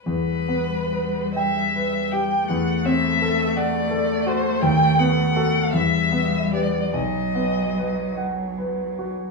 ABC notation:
X:1
M:6/8
L:1/16
Q:3/8=51
K:Em
V:1 name="Violin"
B6 e4 g2 | f2 e4 d4 c2 | g2 f4 e4 d2 | ^d6 z6 |]
V:2 name="Grand piano"
E,,2 B,2 B2 g2 B2 G2 | E,,2 C2 A2 f2 A2 F2 | ^D,,2 B,2 [FA]2 E,,2 B,2 [GB]2 | B,,,2 B,2 B2 f2 B2 F2 |]
V:3 name="Cello" clef=bass
G,12 | A,12- | A,6 G,6 | F,8- F,3 z |]